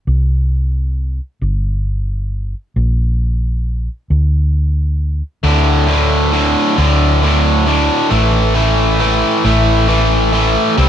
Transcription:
0.07 C2
1.42 G1
2.76 A#1
4.10 D2
5.43 D2 A2 D3
5.88 D2 A2 D3
6.33 D2 A2 D3
6.77 D2 A2 D3
7.22 D2 A2 D3
7.66 D2 A2 D3
8.10 A1 A2 E3 A3
8.55 A2 E3 A3
8.99 A2 E3 A3
9.44 A1 A2 E3 A3
9.88 A2 E3 A3
10.33 A2 E3 A3
10.77 C2 C3 G3 C4

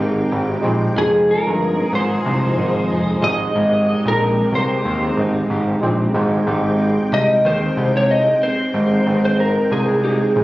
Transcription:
Already playing: G#3 C4 D#4 G4 C5 G5
0.00 G#1 D#4 G4 A#4
0.31 G#1 G4
0.62 A#1 G#3 C4 D#4 G4 C5
0.94 F1 F3 G#3 D#4 F4 G#4 C5
0.98 G#4
1.28 D#4 A#4
1.47 G1
1.61 C4
1.93 G#1 G#4 C5
2.25 C2 C4
2.56 G#1 G#3 D#4 F4 A#4
2.90 F1 G#4
3.21 G#1 G#3 C4 D#4 G4 C5 D#5
3.56 G#1 G#3
3.88 D#4
4.05 A#1 A#4
4.21 C4
4.52 C2 G4 C5
4.85 D#2 C4
5.17 G#1 G#3 D#4 G4 D#5
5.50 G#1 G4
5.82 A#1 G#3 C4 D#4 G4 C5
6.14 G#1 G#3 C4 D#4 G4 C5 G5
6.47 G#1 G#3 D#4 G4 C5
6.80 C4
7.12 C2 G4 D#5
7.45 D#2 D#4 C5
7.77 C2 G4
7.97 C#5
8.09 D#4 D#5
8.42 C4 C5
8.73 G#1 G#3 D#4 G4 D#5
9.06 G#1 G#3 D#4 B4 G5
9.15 C5
9.25 C5
9.40 C4 A#4
9.71 C2 G#4
10.04 D#4 G#4
10.36 A#1

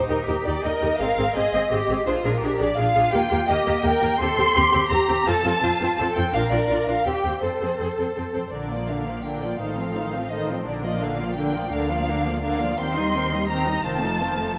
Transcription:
Already playing: D#4
0.09 D#2 D#4 G4 A#4
0.28 D#2 D#4 G4
0.45 D#2 D#4 G4 D5
0.63 D#2 D#4 G4 A#4 D#5
0.81 D#2 D#4 G4
0.98 G#1 C4 G#4 F5
1.17 G#1 C4 G#4
1.35 G#1 C4 G#4 D#5
1.53 G#1 C4 G#4
1.71 G#1 C4 G4 G#4
1.89 G#1 C4 G#4
2.06 A#1 D4 F4 G#4 C5
2.24 A#1 D4 G#4 A#4
2.42 A#1 D4 G4 G#4
2.60 A#1 D4 G#4 D5
2.78 A#1 D4 F4 G#4 F5
2.95 A#1 D4 G#4
3.13 D#2 A#3 G4 G5
3.31 D#2 A#3 G4
3.48 D#2 A#3 G4 D#5
3.65 D#2 A#3 G4
3.83 D#2 A#3 G4 A#4 G5
4.02 D#2 A#3 G4
4.20 D#2 C4 G4 A4 C6
4.38 D#2 C4 G4
4.55 D#2 C4 G4
4.73 D#2 C4 G4
4.91 D#2 C4 G4 A#5
5.09 D#2 C4 G4
5.26 F2 C4 F4 A4 A5
5.44 F2 C4 F4
5.62 F2 C4 F4
5.81 F2 C4 F4
5.98 F2 C4 F4 A4 A5
6.15 F2 C4 F4 G5
6.33 A#1 D4 F4 A#4 F5
6.51 A#1 D4 F4 D5
6.69 A#1 D4 F4
6.87 A#1 D4 F4 F5
7.05 D#2 C4 G4 G5
7.24 D#2 C4 G4
7.43 F2 C4 A4 C5
7.61 F2 C4 A4
7.80 F2 C4 A4
7.98 F2 C4 A4
8.16 F2 C4 A4
8.34 F2 C4 A4 C5
8.52 A#1 A#2 D3 D4 A#4 D5
8.71 F3 A#3 F4 D5
8.88 D3 D4 A#4 F5
9.07 F3 A#3 F4 D5
9.25 D3 D4 A#4 G5
9.42 F3 A#3 F4 D5
9.60 A1 A2 D#3 D#4 A4 C5 F5
9.78 F3 C4 F4 A4
9.96 D#3 D#4 A4 C5
10.14 F3 C4 F4 A4
10.31 D#3 D#4 A4 C5 D#5
10.48 F3 C4 F4 A4 C5
10.65 A#1 A#2 D3 D4 A#4 D5
10.83 F3 A#3 F4 D5 D#5
11.01 D3 D4 A#4 F5
11.19 F3 A#3 F4 D5
11.36 D3 D4 A#4 G5
11.54 F3 A#3 F4 D5
11.71 D2 D3 D4 A#4 F5
11.90 F3 A#3 F4 D5
12.07 D3 D4 A#4
12.24 F3 A#3 F4 D5
12.42 D3 D4 A#4 F5
12.60 F3 A#3 F4 D5
12.79 D#2 D#3 C4 G4 C5 C6
12.96 G3 D#4 D#5
13.14 D#3 C4 G4 C5
13.32 G3 D#4 D#5
13.49 D#3 C4 G4 C5 A#5
13.67 G3 D#4 D#5
13.85 F1 F2 D#3 C4 F4 C5 A5
14.03 F3 A3 D#4 A4
14.20 D#3 C4 F4 C5
14.38 F3 A3 D#4 A4

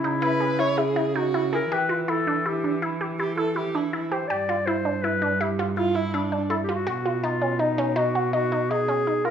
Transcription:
Already playing: C#3 E4
0.04 D#4
0.22 E4 B4
0.40 G#4
0.59 E4 C#5
0.78 E4 G#4
0.96 E4
1.16 D#4 F#4
1.34 E4
1.53 E4 G#4 A#4
1.72 E3 G4 B4
1.89 F4
2.02 B4
2.08 E4 A4
2.27 D4
2.46 E4 G4
2.64 D4
2.82 E4
3.01 G4
3.19 E4 G4
3.37 E4 A4
3.56 E4 G4
3.75 D4 E4
3.93 E4
4.11 G4 C5
4.28 G2 G4 D5
4.49 F4
4.66 E4 C5
4.85 D4
5.03 E4 B4
5.22 D4
5.41 E4 G4
5.59 F4
5.77 E4 F4
5.95 E4
6.14 D4 E4
6.32 D4
6.50 E4 A4
6.63 G4
6.69 F4
6.75 F#4
6.87 B2 F#4
7.05 F4
7.23 D#4 F4
7.42 C#4
7.59 D#4
7.78 C#4
7.96 D#4 F#4
8.15 F#4
8.33 D#4 F#4
8.52 D#4
8.70 D#4 G#4
8.88 C#4
9.07 D#4
9.25 F4 A#4

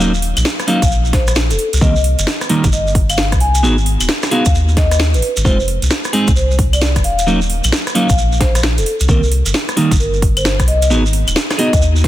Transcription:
Already playing: D#1
0.00 F#3 A#3 C#4 D#4, shekere
0.14 shekere
0.22 open hi-hat
0.37 A#1, closed hi-hat, claves, shekere
0.45 snare, shekere
0.59 cross-stick, closed hi-hat, shekere
0.67 F#3 A#3 C#4 D#4 F5, open hi-hat
0.82 A#1, kick, closed hi-hat, shekere
0.91 shekere
1.05 shekere
1.13 C5, kick, snare, open hi-hat
1.27 cross-stick, closed hi-hat, shekere
1.35 snare, shekere
1.50 D#1 A4, closed hi-hat, shekere
1.59 open hi-hat
1.73 C2, closed hi-hat, shekere
1.81 C2 D#3 G3 A#3 C4 D#5, kick, shekere
1.96 shekere
2.04 open hi-hat
2.19 G1, closed hi-hat, shekere
2.27 snare, shekere
2.41 cross-stick, closed hi-hat, shekere
2.49 D#3 G3 A#3 D#4, open hi-hat
2.64 G1, kick, closed hi-hat, shekere
2.72 D#5, shekere
2.87 shekere
2.95 kick, open hi-hat
3.10 F5, closed hi-hat, claves, shekere
3.17 snare, shekere
3.32 C2, kick, cross-stick, closed hi-hat, shekere
3.40 G#5, open hi-hat
3.55 closed hi-hat, shekere
3.63 G#1 B3 D#4 F#4 G#4, shekere
3.78 shekere
3.86 open hi-hat
4.00 D#1, closed hi-hat, claves, shekere
4.09 snare
4.22 cross-stick, snare, closed hi-hat, shekere
4.31 B3 D#4 F#4 G#4 F5, open hi-hat
4.45 D#2, kick, closed hi-hat, shekere
4.55 shekere
4.69 shekere
4.77 D#5, kick, snare, open hi-hat
4.91 cross-stick, closed hi-hat, shekere
5.00 snare, shekere
5.14 G#1 B4, closed hi-hat, shekere
5.22 open hi-hat
5.37 G#1, closed hi-hat, shekere
5.45 F1 G#3 C4 D#4 F4 C5, kick, shekere
5.60 shekere
5.68 open hi-hat
5.82 C2, closed hi-hat, shekere
5.90 snare, shekere
6.04 cross-stick, closed hi-hat, shekere
6.13 G#3 C4 D#4 G#4, open hi-hat
6.28 C2, kick, closed hi-hat, shekere
6.36 C5, shekere
6.51 shekere
6.59 kick, open hi-hat
6.73 D5, closed hi-hat, claves, shekere
6.82 snare, shekere
6.96 D#1, kick, cross-stick, closed hi-hat, shekere
7.04 F5, open hi-hat
7.19 closed hi-hat, shekere
7.27 F#3 A#3 C#4 D#4, shekere
7.41 shekere
7.50 open hi-hat
7.64 A#1, closed hi-hat, claves, shekere
7.72 snare, shekere
7.87 cross-stick, closed hi-hat, shekere
7.95 F#3 A#3 C#4 D#4 F5, open hi-hat
8.09 A#1, kick, closed hi-hat, shekere
8.18 shekere
8.32 shekere
8.40 C5, kick, snare, open hi-hat
8.55 cross-stick, closed hi-hat, shekere
8.63 snare, shekere
8.78 D#1 A4, closed hi-hat, shekere
8.86 open hi-hat
9.00 C2, closed hi-hat, shekere
9.08 C2 D#3 G3 A#3 C4 A#4, kick, shekere
9.23 shekere
9.32 open hi-hat
9.46 G1, closed hi-hat, shekere
9.54 snare, shekere
9.69 cross-stick, closed hi-hat, shekere
9.77 D#3 G3 A#3 D#4, open hi-hat
9.91 G1, kick, closed hi-hat, shekere
10.00 A#4, shekere
10.14 shekere
10.22 kick, open hi-hat
10.37 C5, closed hi-hat, claves, shekere
10.45 snare, shekere
10.60 C2, kick, cross-stick, closed hi-hat, shekere
10.68 D#5, open hi-hat
10.82 closed hi-hat, shekere
10.90 G#1 B3 D#4 F#4 G#4, shekere
11.06 shekere
11.13 open hi-hat
11.28 D#1, closed hi-hat, claves, shekere
11.36 snare, shekere
11.51 cross-stick, snare, closed hi-hat, shekere
11.58 B3 D#4 F#4 G#4 D#5, open hi-hat
11.73 D#2, kick, closed hi-hat, shekere
11.81 shekere
11.96 shekere
12.04 B4, kick, snare, open hi-hat

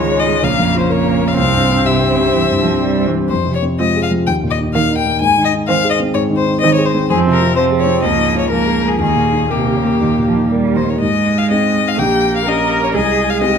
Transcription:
Already playing: C#2 G#2 D#3 G#3 F4 G#4 C#5
0.12 C#5
0.19 D#5
0.27 G#3
0.43 A#1 C#3 A#3 F5
0.59 F2
0.75 F4
0.79 C5
0.89 A#3 A#4 C#5
1.06 C#5
1.21 A#3
1.28 F5
1.37 C2 C3 C4 F5
1.54 G2
1.69 C4
1.85 C3 G4 E5
2.01 C5
2.09 C#3
2.18 G3
2.33 C2 E3
2.51 G2
2.59 F3
2.65 C4
2.82 G3 G4
2.98 C5
3.07 E3
3.14 G3
3.29 F2 C5
3.46 C3
3.55 C#5
3.62 C4
3.79 G#3 C4 F4 D#5
3.96 G#4
4.03 F5
4.11 F3
4.27 D#2 G5
4.43 A#2
4.51 D#5
4.59 D#4
4.74 D#3 A#3 A#4 F5
4.91 D#4
4.98 G5
5.06 A#3
5.21 G#2 G#5
5.38 D#3
5.45 D#5
5.53 D#4
5.68 D#3 C4 C5 F5
5.84 G#4
5.90 D#5
6.00 C4
6.14 G#2 C#5
6.30 D#3
6.37 C5
6.46 D#4
6.61 D#3 C4 C5 D#5
6.74 G#4 C#5
6.85 C5
6.94 C4
7.10 F2 F3 C4 G#4
7.27 C3
7.33 A#4
7.41 F4
7.56 F3 C4 C5
7.71 G#4
7.79 C#5
7.86 C4
8.01 C#2 F3 A#3 D#5
8.18 G#2
8.33 F4
8.38 C#5
8.50 F3 A#3 A#4
8.66 G#4
8.82 A#3
8.88 G#4
8.98 D#2 D#3 A#3 G#4
9.16 A#2
9.32 D#4
9.50 C3 A#3 G4 A#4
9.67 G4
9.76 C#3
9.84 A#3
10.01 D#2 D#3
10.18 A#2
10.27 F3
10.35 D#4
10.52 G3 A#4
10.68 G4
10.76 D#3 C5
10.84 A#3
10.89 C#5
11.01 G#2 G#3 D#5
11.38 F5
11.50 C4 D#4 G#4 D#5
11.88 F5
11.98 A#1 A#3 G4 G5
12.36 F5
12.46 A#3 C#4 G4 A#4 D#5
12.84 C#5
12.93 C2 G#3 G#4 D#5
13.30 F5
13.41 C4 D#4 G4 G#4 D#5

